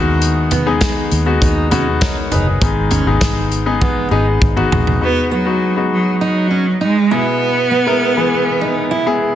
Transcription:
0.00 1.08 D#2 loud
0.00 0.78 D#3 medium
0.00 0.60 G#3 medium
0.00 0.60 B3 medium
0.00 0.60 D#4 medium
0.00 0.60 F#4 loud
0.22 closed hi-hat medium
0.51 0.66 B3 medium
0.51 closed hi-hat medium
0.51 floor tom medium
0.66 1.21 G#3 medium
0.66 1.21 B3 medium
0.66 1.21 D#4 medium
0.66 1.21 G#4 loud
0.81 kick loud
0.81 snare loud
0.81 closed hi-hat medium
1.12 1.40 D#2 medium
1.12 closed hi-hat medium
1.26 1.67 G#3 medium
1.26 1.67 B3 medium
1.26 1.67 D#4 medium
1.26 1.67 F#4 medium
1.41 2.27 D#2 loud
1.41 1.70 D#4 medium
1.41 kick medium
1.41 closed hi-hat medium
1.71 2.12 G#3 medium
1.71 2.12 B3 medium
1.71 1.86 C#4 medium
1.71 2.12 D#4 medium
1.71 2.12 F#4 medium
1.71 closed hi-hat medium
1.71 floor tom medium
2.01 2.16 D#4 medium
2.01 2.30 A#4 medium
2.01 2.30 C#5 medium
2.01 kick loud
2.01 snare loud
2.01 closed hi-hat loud
2.31 2.59 F#1 medium
2.31 2.46 D#4 medium
2.31 2.46 G#4 medium
2.31 2.46 B4 medium
2.31 closed hi-hat medium
2.31 floor tom medium
2.47 2.61 G#4 medium
2.61 3.03 G#1 loud
2.61 3.48 G#2 medium
2.61 3.48 D#3 medium
2.61 3.03 G#3 medium
2.61 3.03 B3 medium
2.61 3.03 D#4 medium
2.61 3.03 G#4 medium
2.61 kick loud
2.61 closed hi-hat medium
2.91 3.06 C#4 medium
2.91 closed hi-hat medium
2.91 floor tom medium
3.06 3.20 G#1 medium
3.06 3.61 G#3 medium
3.06 3.61 B3 medium
3.06 3.61 D#4 medium
3.06 3.61 G#4 medium
3.21 kick loud
3.21 snare loud
3.21 closed hi-hat medium
3.52 closed hi-hat medium
3.66 4.07 G#3 medium
3.66 4.07 B3 medium
3.66 4.07 D#4 medium
3.66 4.07 G#4 medium
3.81 4.10 B3 medium
3.81 kick loud
3.81 high tom soft
4.11 4.39 G#1 loud
4.11 4.52 G#3 medium
4.11 4.52 B3 medium
4.11 4.26 D#4 medium
4.11 4.52 D#4 medium
4.11 4.52 G#4 medium
4.42 4.69 G#1 medium
4.42 kick loud
4.56 4.97 G#3 medium
4.56 4.97 B3 medium
4.56 4.97 D#4 medium
4.56 4.97 F#4 medium
4.56 mid tom medium
4.71 4.99 A#1 medium
4.71 floor tom loud
4.87 floor tom medium
5.01 5.42 G#3 medium
5.01 5.42 B3 medium
5.01 5.30 B3 medium
5.01 5.42 D#4 medium
5.01 5.42 F#4 medium
5.31 5.88 F#3 medium
5.31 5.46 B3 medium
5.46 5.73 G#3 medium
5.46 5.73 B3 medium
5.46 5.74 D#4 medium
5.46 5.74 F#4 medium
5.76 6.85 G#3 medium
5.76 6.85 B3 medium
5.76 6.86 D#4 medium
5.76 6.86 F#4 medium
5.93 6.20 F#3 medium
6.21 6.79 F#3 medium
6.21 6.50 D#4 medium
6.51 6.65 C#4 medium
6.81 7.15 G#3 medium
6.81 6.95 D#4 medium
7.11 7.97 B2 medium
7.11 7.79 G#3 medium
7.11 7.79 B3 medium
7.11 9.35 B3 loud
7.11 7.26 E4 medium
7.11 7.80 E4 medium
7.11 7.80 G#4 medium
7.71 7.85 B3 medium
7.86 8.14 G#3 medium
7.86 8.14 B3 medium
7.86 8.14 E4 medium
7.86 8.14 A#4 medium
8.17 8.98 E3 medium
8.17 8.98 G#3 medium
8.17 8.98 B3 medium
8.17 8.98 G#4 medium
8.61 8.90 D#4 medium
8.91 9.05 E4 medium
9.06 9.35 G#3 medium
9.06 9.35 B3 medium
9.06 9.35 E4 medium
9.06 9.35 G#4 medium

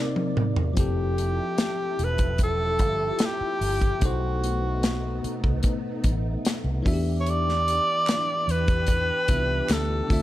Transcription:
0.00 0.74 C3 medium
0.00 0.76 C3 medium
0.00 0.74 A#3 medium
0.00 0.74 C4 medium
0.00 0.74 D#4 medium
0.00 0.77 D#4 medium
0.00 0.77 A#4 medium
0.00 0.74 D5 medium
0.00 0.78 D5 medium
0.16 high tom medium
0.37 mid tom medium
0.56 floor tom medium
0.74 1.39 F1 medium
0.74 3.96 F3 medium
0.74 3.98 F3 medium
0.74 3.97 C4 medium
0.74 3.97 E4 medium
0.74 3.98 E4 medium
0.74 3.98 G4 medium
0.74 3.98 A4 medium
0.74 kick loud
0.74 closed hi-hat medium
0.78 3.98 G4 medium
0.78 2.06 G4 medium
0.78 3.98 A4 medium
1.18 closed hi-hat medium
1.58 snare loud
1.58 closed hi-hat medium
1.99 2.79 E1 medium
1.99 closed hi-hat medium
2.04 2.42 B4 medium
2.18 kick medium
2.18 closed hi-hat soft
2.38 kick medium
2.38 closed hi-hat medium
2.43 3.27 A4 loud
2.79 3.10 G1 medium
2.79 kick medium
2.79 closed hi-hat medium
3.19 snare loud
3.19 closed hi-hat medium
3.26 4.08 G4 loud
3.41 muted fingered electric bass stroke soft
3.61 3.92 G1 medium
3.61 open hi-hat medium
3.81 kick medium
3.81 closed hi-hat medium
3.99 5.19 B1 loud
3.99 6.80 B2 medium
3.99 6.83 A3 medium
3.99 6.82 B3 medium
3.99 6.81 B3 medium
3.99 6.82 D#4 medium
3.99 kick loud
3.99 closed hi-hat medium
4.04 5.66 F#4 medium
4.04 6.83 A4 medium
4.04 6.83 C5 medium
4.44 closed hi-hat medium
4.83 snare loud
4.83 closed hi-hat medium
5.24 muted fingered electric bass stroke soft
5.24 closed hi-hat medium
5.43 5.59 C2 medium
5.43 kick medium
5.63 kick loud
5.63 closed hi-hat medium
6.04 6.35 A1 medium
6.04 kick medium
6.04 closed hi-hat medium
6.45 snare loud
6.45 closed hi-hat medium
6.64 6.80 C2 medium
6.82 7.78 E2 loud
6.82 9.23 E3 medium
6.82 10.07 E3 medium
6.82 9.24 B3 medium
6.82 10.07 D4 medium
6.82 9.25 D4 medium
6.82 6.92 F#4 medium
6.82 10.07 G4 medium
6.82 kick medium
6.82 open hi-hat medium
6.88 9.26 E5 medium
6.93 9.29 G4 medium
7.21 7.32 C#5 medium
7.27 8.53 D5 loud
7.27 closed hi-hat medium
7.49 snare soft
7.68 closed hi-hat medium
8.07 snare loud
8.07 clap medium
8.07 closed hi-hat medium
8.48 9.10 E2 medium
8.48 9.74 B4 loud
8.48 closed hi-hat medium
8.68 kick medium
8.68 closed hi-hat medium
8.87 kick loud
8.87 closed hi-hat medium
9.28 9.60 C2 medium
9.28 10.10 E3 soft
9.28 10.10 B3 medium
9.28 10.10 D4 soft
9.28 9.36 F4 soft
9.28 10.11 E5 medium
9.28 kick medium
9.28 closed hi-hat medium
9.36 10.14 G4 soft
9.69 10.00 D2 medium
9.69 10.22 A4 medium
9.69 snare loud
9.69 clap medium
9.69 closed hi-hat loud
10.07 10.22 D2 medium
10.07 10.22 D3 medium
10.07 10.22 A3 medium
10.07 10.22 C4 medium
10.07 kick loud
10.07 open hi-hat medium
10.11 10.22 F4 medium
10.11 10.22 E5 medium

